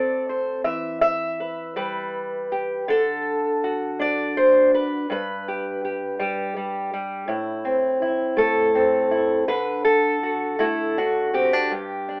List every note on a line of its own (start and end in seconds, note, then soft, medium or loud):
0.00 0.61 A3 medium
0.00 0.61 C4 medium
0.00 0.61 A4 soft
0.00 0.28 D5 loud
0.29 0.61 C5 soft
0.64 2.83 E3 medium
0.64 1.00 E5 medium
1.01 2.50 E5 loud
1.40 1.76 B4 soft
1.76 2.88 G3 medium
1.76 2.88 B4 medium
2.52 2.84 G4 soft
2.88 5.10 D3 medium
2.88 4.37 A4 loud
3.64 5.06 F#4 soft
3.99 5.05 D4 medium
3.99 5.11 D5 loud
4.37 4.73 C5 medium
4.74 5.10 B4 medium
5.10 7.27 G2 medium
5.10 6.93 B4 medium
5.48 5.83 G4 soft
5.85 6.19 G4 soft
6.19 6.55 G3 medium
6.19 7.29 G4 medium
6.57 6.92 G3 soft
6.93 7.29 G3 medium
7.28 9.43 A2 medium
7.28 8.01 E4 medium
7.65 8.74 C4 soft
8.02 9.10 E4 medium
8.37 9.43 A3 medium
8.37 9.48 A4 medium
8.75 9.48 C4 soft
9.11 9.43 E4 soft
9.48 11.72 D3 medium
9.48 9.84 B4 loud
9.85 11.34 A4 medium
10.23 10.58 F#4 soft
10.59 11.67 A3 medium
10.59 10.97 E4 medium
10.59 10.65 F#4 medium
10.98 11.33 D4 soft
10.98 11.72 F#4 medium
11.33 11.53 C4 soft
11.33 12.20 G4 medium
11.53 11.72 D4 soft
11.71 12.20 G2 medium
12.09 12.20 D4 soft